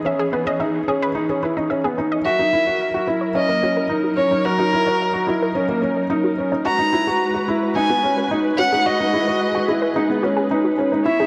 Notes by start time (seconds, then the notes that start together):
Already playing: E3 G#4
0.05 C#4 E5
0.19 G#4
0.32 B3 B4
0.46 C#4 D#5
0.60 D#4 E5
0.88 C#4 G#4
1.02 B4
1.15 D#4
1.29 C#4 G#4
1.43 E4 B4
1.57 D#4 D#5
1.70 C#4 E5
1.84 B3 G#4
1.98 D#4 B4
2.12 D#5
2.25 F#3 E4 F#4 A#4 E5
2.39 D#4 F#4
2.53 E4 A#4
2.67 F#4 C#5
2.81 E5
2.94 F#4
3.07 E4 A#4
3.21 C#5
3.35 C#4 D#5 E5
3.49 A#3
3.62 C#4 F#4
3.77 A#4
3.89 D#4
4.04 F#4
4.17 C#4 A#4 C#5
4.31 D#4 C#5
4.44 D#4 F#4 A#4 E5
4.58 D#4 F#4
4.73 E4 A#4
4.86 F#4 C#5
5.02 E5
5.13 F#4
5.27 E4 F#4
5.42 A#4
5.55 C#4
5.68 A#3 F#4
5.82 C#4 A#4
5.97 C#5
6.10 D#4 E5
6.24 F#4
6.38 C#4 A#4
6.52 D#4 C#5
6.65 G#3 F#4 B4 D#5 A#5
6.79 D#4
6.93 E4 F#4
7.07 F#4 G#4
7.34 F#4
7.48 E4 G#4
7.63 B4
7.76 D#4 D#5 G#5
7.89 B3 F#4
8.03 C#4 G#4
8.17 B4
8.31 D#4 D#5
8.58 C#4 F#4 F#5
8.72 D#4 G#4
8.86 F#4 G#4 D#5
9.00 D#4 F#4
9.13 E4 G#4
9.27 F#4 B4
9.41 D#5
9.55 F#4
9.68 E4 G#4
9.82 B4
9.96 D#4 D#5
10.10 B3
10.23 C#4 F#4
10.37 G#4
10.51 D#4
10.64 F#4
10.78 C#4 G#4
10.92 D#4 B4
11.05 B3 E4 C#5 E5
11.20 D#4 G#4